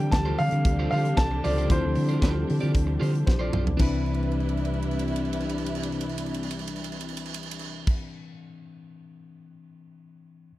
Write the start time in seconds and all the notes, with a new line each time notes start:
Already playing: C3 D3 E3 F3 G3 C4 D4 G4 G5
0.00 muted clean electric guitar stroke
0.11 D2 A5, muted clean electric guitar stroke, kick, snare, closed hi-hat
0.26 F4 G4 C5
0.39 D3 F5, muted clean electric guitar stroke, open hi-hat
0.51 D3, muted clean electric guitar stroke, closed hi-hat
0.65 D2, muted clean electric guitar stroke, kick, closed hi-hat
0.79 F4 G4 C5
0.91 D3 F4 G4 C5 F5, open hi-hat
1.05 muted clean electric guitar stroke, closed hi-hat
1.17 C2 A5, muted clean electric guitar stroke, kick, snare, closed hi-hat
1.31 muted clean electric guitar stroke
1.44 C#2 F4 G4 C5 D5, open hi-hat
1.58 F4 G4 C5, closed hi-hat
1.68 D2 F3 C4 D4 E4 F4 G4 C5, kick, closed hi-hat
1.83 D2, muted clean electric guitar stroke
1.95 D3, muted clean electric guitar stroke, open hi-hat
2.09 F4 G4 C5, closed hi-hat
2.22 D2 F4 G4 C5, kick, snare, closed hi-hat
2.34 muted clean electric guitar stroke
2.47 D3, muted clean electric guitar stroke, open hi-hat
2.60 D3 F4 G4 D5, closed hi-hat
2.74 D2, muted clean electric guitar stroke, kick, closed hi-hat
2.87 muted clean electric guitar stroke
3.00 D3 F4 G4 C5, open hi-hat
3.13 muted clean electric guitar stroke, closed hi-hat
3.27 A#1 C5, muted clean electric guitar stroke, kick, snare
3.39 F4 G4 C5 D5
3.52 B1 F4 G4 C5, mid tom
3.65 muted clean electric guitar stroke, floor tom
3.77 C2 C3 E3 G3 C4 D4 E4 B4, kick, crash
3.82 B4
4.06 crash
4.14 ride
4.23 crash
4.32 ride
4.40 crash
4.49 ride
4.57 crash
4.65 ride
4.74 crash
4.82 ride
4.91 crash
4.99 ride
5.08 crash
5.16 ride
5.25 crash
5.33 ride
5.40 crash
5.49 ride
5.58 crash
5.66 ride
5.75 crash
5.83 ride
5.92 crash
6.01 ride
6.09 crash
6.18 ride
6.26 crash
6.34 ride
6.43 crash
6.51 ride
6.59 crash
6.67 ride
6.76 crash
6.84 ride
6.92 crash
7.01 ride
7.08 crash
7.17 ride
7.25 crash
7.34 ride
7.43 crash
7.51 ride
7.59 crash
7.87 kick, crash